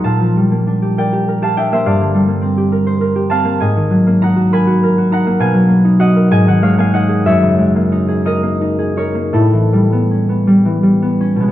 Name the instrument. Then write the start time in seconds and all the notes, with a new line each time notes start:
harp
Already playing: A#3 A#4 A#5
0.04 A#2 F5 A5
0.20 F3
0.36 G3
0.51 A#3
0.67 D4
0.82 G4
0.98 A#4 D5 G5
1.13 G4
1.28 A#4
1.42 G4 F5 A5
1.57 D4 E5 G5
1.72 A#3 C5 E5
1.86 G2 D5 F5
2.01 D3
2.14 G3
2.28 A#3
2.41 C4
2.58 G4
2.72 A#4
2.86 C5
3.01 A#4
3.16 G4
3.30 C4 F5 A5
3.45 A#3
3.60 G#2 D#5 G#5
3.76 D#3
3.91 F#3
4.07 A#3
4.22 D#4 F#5 A#5
4.36 F#4
4.53 A#4 G#5 B5
4.67 F#4
4.83 A#4
4.98 F#4
5.11 D#4 F#5 A#5
5.26 A#3
5.40 B2 F5 G#5
5.54 F#3
5.69 A#3
5.85 D#4
5.99 F#4 D#5 F#5
6.16 A#4
6.31 G#2 D#5 G#5
6.47 D#3 D#5 F#5
6.62 G#3 C#5 F5
6.78 A#3 F5 G#5
6.93 D#4 D#5 F#5
7.09 G#4
7.26 F#2 C#5 E5
7.43 C#3
7.59 G#3
7.76 A#3
7.92 D#4
8.08 G#4
8.25 D#4 A#4 D#5
8.43 A#3
8.61 D#4
8.79 G#4
8.97 D#4 A#4 C#5
9.14 A#3
9.33 A2 E4 A4
9.53 E3
9.73 G3
9.92 B3
10.11 C#4
10.29 B3
10.47 G3
10.65 E3
10.83 G3
11.02 B3
11.21 C#4
11.36 B2
11.40 G#3 B3
11.48 B3